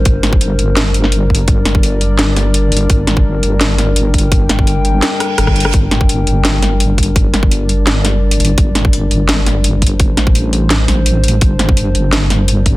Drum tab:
HH |x---x---x---x---x---x---x----x--|x---x---x---x---x---x---x---xx--|x---x-------x---x---x---x---xx--|x---x---x---x---x---x---x---xx--|
SD |----o-----------o-----o---------|----o-----------o---o-----------|----o-----------o---o-----------|----o-----------o---r---r-r---r-|
BD |o-----o---------------------o---|o-----o-------------------------|o-----o---------------------o---|o-----o-------------------o-----|

HH |x---x---x---x---x---x---x---xx--|x---x---x---x---x---x-----x-xx--|x---x---x---x---x---x---x---xx--|x---x---x---x---x---x---x---xx--|
SD |----o-----------o---o-----------|----o-----------o---o-----------|----o-----------o---o-----------|----o-----------o---o-----------|
BD |o-----o---------------------o---|o-----o-------------------------|o-----o---------------------o---|o-----o-------------------------|

HH |x---x---x---x---x---x---x---x---|
SD |----o-----------o---o-----------|
BD |o-----o---------------------o---|